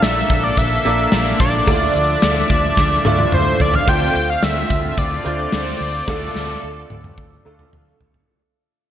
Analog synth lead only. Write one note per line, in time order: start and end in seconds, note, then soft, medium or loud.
0.02 0.45 E5 loud
0.44 0.59 D5 medium
0.58 1.40 E5 loud
1.40 3.29 D5 medium
3.34 3.63 C5 medium
3.61 3.77 D5 loud
3.75 3.90 F5 loud
3.89 4.31 G5 loud
4.30 4.45 F5 loud
4.44 4.90 E5 loud
4.91 5.00 E5 medium
4.98 7.73 D5 medium